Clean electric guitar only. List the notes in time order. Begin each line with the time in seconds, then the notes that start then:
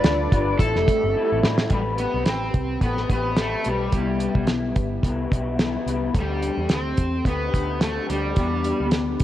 Already playing: D4 F4 B4
0.31 G3 D4 F4 B4
0.59 A2 G3 C4 E4
1.14 A2 G3 C4 E4
1.42 A2 G3 C4 E4
1.71 A3 C4 G4 B4
2.14 C4 G4 B4
2.83 A3 C4 G4 B4
3.11 A3 C4 G4 B4
3.38 A3 C4 G4 B4
3.65 A3 C4 G4 B4
3.93 C3 G3 B3 E4
4.36 G3 B3 E4
5.03 C3 G3 B3 E4
5.30 C3 G3 B3 E4
5.58 C3 G3 B3 E4
5.86 C3 G3 B3 E4
6.15 D3 A3 C4 G4
6.57 C4 G4
6.61 A3
7.25 D3 A3 C4 G4
7.52 D3 A3 C4 G4
7.79 D3 A3 C4
7.83 G4
8.08 D3 A3 C4 G4
8.36 E3 B3 D4 G4
8.79 B3 D4 G4